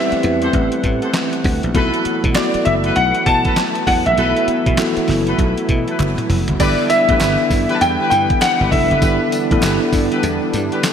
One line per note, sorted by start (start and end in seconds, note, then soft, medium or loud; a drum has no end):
0.00 1.71 E3 medium
0.00 1.71 G3 medium
0.00 6.56 A3 medium
0.00 1.74 B3 medium
0.00 1.71 C4 medium
0.00 1.76 C4 medium
0.00 1.75 E4 medium
0.00 1.76 G4 medium
0.00 1.76 B4 medium
0.00 1.41 E5 medium
0.00 4.13 F#5 medium
0.12 muted slap bass stroke soft
0.12 closed hi-hat medium
0.23 0.48 E2 medium
0.23 closed hi-hat medium
0.42 0.51 G4 medium
0.42 0.52 A4 medium
0.42 0.52 C5 medium
0.42 closed hi-hat medium
0.53 0.68 A1 medium
0.53 kick loud
0.53 closed hi-hat medium
0.72 closed hi-hat medium
0.84 0.99 A2 loud
0.84 kick medium
0.84 closed hi-hat medium
1.02 1.12 G4 medium
1.02 1.12 A4 medium
1.02 1.12 C5 medium
1.02 closed hi-hat soft
1.14 snare loud
1.14 clap medium
1.14 closed hi-hat medium
1.33 closed hi-hat medium
1.44 1.60 D2 medium
1.44 kick medium
1.44 open hi-hat medium
1.63 1.73 A#1 medium
1.63 closed hi-hat soft
1.74 1.90 B1 loud
1.74 6.55 E3 medium
1.74 6.56 F#3 medium
1.74 2.29 B3 medium
1.74 6.56 B3 medium
1.74 2.03 E4 medium
1.74 2.29 E4 medium
1.74 2.29 F#4 medium
1.74 2.03 A4 medium
1.74 2.30 A4 medium
1.74 2.03 B4 loud
1.74 kick loud
1.74 closed hi-hat medium
1.94 closed hi-hat medium
2.05 muted slap bass stroke soft
2.05 closed hi-hat medium
2.24 2.33 B2 loud
2.24 kick loud
2.24 closed hi-hat medium
2.35 3.44 B3 medium
2.35 3.44 E4 medium
2.35 3.44 F#4 medium
2.35 3.44 A4 medium
2.35 2.67 D5 medium
2.35 snare loud
2.35 clap loud
2.35 clap medium
2.35 closed hi-hat medium
2.54 muted slap bass stroke soft
2.54 closed hi-hat medium
2.65 2.90 F#1 medium
2.65 2.72 E5 medium
2.65 closed hi-hat medium
2.84 2.94 E4 medium
2.84 2.94 A4 medium
2.84 2.94 B4 medium
2.84 closed hi-hat medium
2.96 3.11 B1 loud
2.96 3.24 F#5 loud
2.96 closed hi-hat medium
3.15 closed hi-hat medium
3.26 3.41 B2 loud
3.26 3.89 A5 loud
3.26 kick medium
3.26 closed hi-hat medium
3.45 3.54 E4 medium
3.45 3.54 A4 medium
3.45 3.55 B4 medium
3.45 kick medium
3.45 closed hi-hat soft
3.56 snare loud
3.56 clap medium
3.56 closed hi-hat medium
3.75 closed hi-hat medium
3.87 4.02 E2 medium
3.87 3.92 F#5 loud
3.87 kick medium
3.87 open hi-hat medium
4.06 4.15 A#1 loud
4.06 6.26 E5 medium
4.06 closed hi-hat medium
4.17 4.32 B1 loud
4.17 4.72 B3 medium
4.17 4.46 E4 medium
4.17 4.72 E4 medium
4.17 6.57 E4 medium
4.17 4.72 F#4 medium
4.17 4.46 A4 medium
4.17 4.72 A4 medium
4.17 4.46 B4 loud
4.17 closed hi-hat medium
4.37 closed hi-hat medium
4.48 muted slap bass stroke medium
4.48 closed hi-hat medium
4.66 4.76 B2 medium
4.66 kick loud
4.66 closed hi-hat medium
4.77 5.86 B3 loud
4.77 5.86 E4 medium
4.77 5.87 F#4 medium
4.77 5.87 A4 loud
4.77 snare loud
4.77 clap loud
4.77 clap medium
4.77 closed hi-hat medium
4.97 muted slap bass stroke soft
4.97 closed hi-hat medium
5.08 5.32 F#1 medium
5.08 snare medium
5.08 open hi-hat medium
5.27 5.36 E4 medium
5.27 5.36 A4 medium
5.27 5.37 B4 medium
5.27 closed hi-hat medium
5.38 5.53 B1 loud
5.38 kick loud
5.38 closed hi-hat medium
5.58 closed hi-hat medium
5.69 5.84 B2 loud
5.69 kick medium
5.69 closed hi-hat medium
5.88 5.97 E4 medium
5.88 5.97 A4 medium
5.88 5.97 B4 medium
5.88 closed hi-hat soft
5.99 6.14 F#1 loud
5.99 clap medium
5.99 closed hi-hat medium
5.99 high tom medium
6.18 closed hi-hat medium
6.18 mid tom medium
6.30 6.44 F1 medium
6.30 mid tom medium
6.30 open hi-hat medium
6.48 6.58 F#1 medium
6.48 closed hi-hat medium
6.48 floor tom medium
6.59 6.75 G1 loud
6.59 10.93 D3 medium
6.59 10.93 E3 medium
6.59 10.93 G3 medium
6.59 10.93 B3 medium
6.59 7.01 B3 medium
6.59 7.01 D4 medium
6.59 8.99 E4 medium
6.59 6.75 E4 medium
6.59 7.02 E4 medium
6.59 6.75 G4 medium
6.59 7.02 A4 medium
6.59 6.75 B4 loud
6.59 6.91 D5 medium
6.59 kick loud
6.59 closed hi-hat medium
6.59 crash loud
6.59 tambourine medium
6.90 7.78 E5 loud
6.90 closed hi-hat medium
6.90 tambourine medium
7.09 7.18 A1 medium
7.09 8.10 B3 medium
7.09 8.11 D4 medium
7.09 7.18 E4 medium
7.09 8.11 E4 medium
7.09 7.18 G4 medium
7.09 8.11 A4 medium
7.09 7.18 B4 medium
7.09 kick loud
7.09 closed hi-hat medium
7.20 7.36 G1 medium
7.20 7.35 E4 medium
7.20 7.36 G4 medium
7.20 7.36 B4 medium
7.20 snare loud
7.20 clap loud
7.20 clap medium
7.20 closed hi-hat medium
7.20 tambourine medium
7.50 7.66 G2 medium
7.50 kick loud
7.50 open hi-hat medium
7.50 tambourine medium
7.69 7.78 E4 medium
7.69 7.79 G4 medium
7.69 7.79 B4 medium
7.69 closed hi-hat medium
7.75 7.80 A5 medium
7.81 7.96 E2 loud
7.81 8.09 G5 loud
7.81 closed hi-hat medium
7.81 tambourine medium
7.99 8.09 E4 medium
7.99 8.09 G4 medium
7.99 8.09 B4 medium
8.10 8.26 G2 loud
8.10 8.42 G5 loud
8.10 closed hi-hat medium
8.10 tambourine medium
8.30 kick medium
8.30 closed hi-hat soft
8.41 8.73 F#5 loud
8.41 snare loud
8.41 clap medium
8.41 closed hi-hat medium
8.41 tambourine medium
8.60 8.70 G1 medium
8.60 8.69 E4 medium
8.60 8.70 G4 medium
8.60 8.70 B4 medium
8.71 8.87 F1 loud
8.71 8.99 B3 medium
8.71 8.99 D4 medium
8.71 8.99 E4 medium
8.71 9.00 A4 medium
8.71 10.49 E5 loud
8.71 kick loud
8.71 open hi-hat medium
8.90 9.00 F#1 medium
8.90 9.00 E4 medium
8.90 9.00 G4 medium
8.90 9.00 B4 medium
8.90 closed hi-hat medium
9.01 9.17 G1 loud
9.01 9.44 B3 medium
9.01 10.93 D4 medium
9.01 9.44 D4 medium
9.01 9.17 E4 medium
9.01 9.44 E4 medium
9.01 9.17 G4 medium
9.01 9.44 A4 medium
9.01 9.17 B4 loud
9.01 kick loud
9.01 closed hi-hat medium
9.01 tambourine medium
9.32 closed hi-hat medium
9.32 tambourine medium
9.50 9.61 A1 medium
9.50 10.53 B3 medium
9.50 10.53 D4 medium
9.50 9.60 E4 medium
9.50 10.53 E4 medium
9.50 9.60 G4 medium
9.50 10.53 A4 loud
9.50 9.61 B4 medium
9.50 kick loud
9.50 closed hi-hat medium
9.62 9.78 G1 loud
9.62 9.78 E4 medium
9.62 9.78 G4 medium
9.62 9.78 B4 medium
9.62 snare loud
9.62 clap loud
9.62 clap medium
9.62 closed hi-hat medium
9.62 tambourine loud
9.93 10.08 G2 loud
9.93 kick loud
9.93 open hi-hat medium
9.93 tambourine medium
10.11 10.21 E4 medium
10.11 10.21 G4 medium
10.11 10.21 B4 medium
10.11 closed hi-hat medium
10.23 10.38 E2 loud
10.23 closed hi-hat medium
10.23 tambourine medium
10.53 10.69 G2 loud
10.53 closed hi-hat medium
10.53 tambourine medium
10.72 10.81 E4 medium
10.72 10.82 G4 medium
10.72 10.82 B4 medium
10.72 closed hi-hat soft
10.83 snare loud
10.83 clap medium
10.83 closed hi-hat medium
10.83 tambourine medium